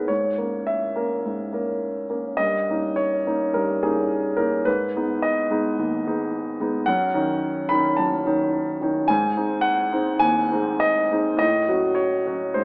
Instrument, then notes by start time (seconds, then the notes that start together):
grand piano
Already playing: D#2 B3 D#4 G#4 A#4 B4 C#5
0.08 G#2 C#5
0.38 A#3 C#4 A#4
0.67 E5
0.96 A#3 C#4 A#4
1.25 G#2
1.53 A#3 C#4 A#4
2.10 A#3 C#4 A#4
2.37 G2 D#5
2.69 A#3 C#4 D#4
2.96 C#5
3.27 A#3 C#4 D#4
3.54 G2 A#4
3.83 A#3 C#4 D#4 G#4
4.37 A#3 C#4 D#4 A#4
4.65 G#2 B4
4.96 G#3 B3 D#4
5.22 D#5
5.50 G#3 B3 D#4
5.79 D#2
6.06 G#3 B3 D#4
6.60 G#3 B3 D#4
6.86 F#2 F#5
7.14 D#3 C#4 D#4
7.69 D#3 C#4 D#4 B5
7.97 F#2 A5
8.26 D#3 C#4 D#4
8.81 D#3 C#4 D#4
9.08 G#2 G#5
9.37 G#3 C4 D#4
9.61 F#5
9.92 G#3 C4 D#4
10.19 D#2 G#5
10.52 G#3 C4 D#4
10.80 D#5
11.11 G#3 C4 D#4
11.37 A2 D#5
11.68 F#3 C#4 F#4
11.95 C#5
12.27 F#3 C#4 F#4
12.54 G#2 C5